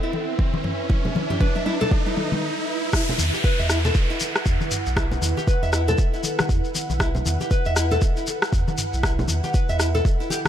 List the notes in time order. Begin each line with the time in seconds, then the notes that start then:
Already playing: E4 B4 E5, riser
0.03 E4
0.13 mid tom, muted conga
0.39 kick, mid tom, muted conga
0.54 high conga
0.64 mid tom, muted conga
0.89 E4, kick, mid tom, muted conga
1.05 mid tom, low conga
1.15 mid tom, high conga
1.30 G4, mid tom, muted conga, high conga
1.41 B4, kick, mid tom
1.55 E5, mid tom, muted conga
1.66 E4, mid tom
1.81 A4, mid tom, muted conga, low conga
1.91 kick, mid tom
2.06 E4, mid tom
2.16 mid tom, muted conga, high conga
2.32 mid tom, high conga
2.93 E4 B4 F#5, kick, cross-stick, downlifter, muted conga, shekere
3.09 low conga, shekere
3.18 E2, high conga, shekere
3.33 G4, muted conga, high conga, shekere
3.44 B4, kick, shekere
3.59 E2 E5, muted conga, shekere
3.69 E4, cross-stick, shekere
3.84 A4, muted conga, low conga, shekere
3.95 E1, kick, shekere
4.10 E4, shekere
4.20 muted conga, shekere
4.36 cross-stick, shekere
4.46 E2, kick, muted conga, shekere
4.61 high conga, shekere
4.71 mid tom, muted conga, shekere
4.86 B1, shekere
4.97 E4, kick, cross-stick, muted conga, shekere
5.11 low conga, shekere
5.22 E2, high conga, shekere
5.37 G4, muted conga, high conga, shekere
5.47 B4, kick, shekere
5.62 E2 E5, muted conga, shekere
5.73 E4, cross-stick, shekere
5.88 A4, muted conga, low conga, shekere
5.98 E1, kick, shekere
6.14 E4, shekere
6.23 muted conga, high conga, shekere
6.39 cross-stick, high conga, shekere
6.49 E2, kick, muted conga, shekere
6.64 shekere
6.75 muted conga, high conga, shekere
6.90 B1, high conga, shekere
6.99 E4, kick, cross-stick, muted conga, shekere
7.15 low conga, shekere
7.26 E2, high conga, shekere
7.40 G4, muted conga, high conga, shekere
7.51 B4, kick, shekere
7.65 E2 E5, muted conga, shekere
7.76 E4, cross-stick, shekere
7.91 A4, muted conga, low conga, shekere
8.01 E1, kick, shekere
8.17 E4, shekere
8.27 muted conga, shekere
8.42 cross-stick, shekere
8.53 E2, kick, muted conga, shekere
8.68 high conga, shekere
8.78 mid tom, muted conga, shekere
8.93 B1, shekere
9.03 E4, kick, cross-stick, muted conga, shekere
9.19 low conga, shekere
9.28 E2, high conga, shekere
9.44 G4, muted conga, high conga, shekere
9.54 B4, kick, shekere
9.69 E2 E5, muted conga, shekere
9.80 E4, cross-stick, shekere
9.94 A4, muted conga, low conga, shekere
10.05 E1, kick, shekere
10.20 E4, shekere
10.30 G4, muted conga, high conga, shekere
10.45 high conga